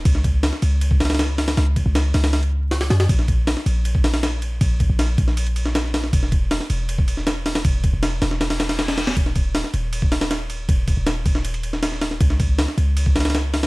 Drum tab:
RD |x---x-------x---x-------x-------|----x---x---------x-------------|x---x-------x---x-------x---x---|x---x---x---x---x-x-x---x-------|
HH |--------o-----------oooo----o-o-|o-----------o-o-o-------o-o-o-o-|--------o-----------o-o---------|----------------------------o---|
SD |--o-----o-o---------ooooo---o-o-|o-------o---o-o-o-------o-o-o-o-|--o-----o-o---------o-o-o-------|--------o-----o-------o-o-o-o-o-|
BD |o---o-------------o-------------|----o---------------------------|o---o-------------o-------------|o---o-------o-------------------|

RD |x---x-------x---x---x---x-------|x---x---x-----------------------|x---x-------x---x-------x---x---|x---x---x---x---x-x-x---x-------|
HH |--------o-------------------o-o-|------------o---o-o-o-o-o-o-o-o-|--------o-----------o-o---------|----------------------------o---|
SD |--o-----o-o-----------o-o---o-o-|--------o---o-o-o-o-o-o-o-o-o-o-|--o-----o-o---------o-o-o-------|--------o-----o-------o-o-o-o-o-|
BD |o---o-------------o-------------|o---o---------------------------|o---o-------------o-------------|o---o-------o-------------------|

RD |x---x-------x---x-------x-------|
HH |--------o-----------oooo----o-o-|
SD |--o-----o-o---------ooooo---o-o-|
BD |o---o-------------o-------------|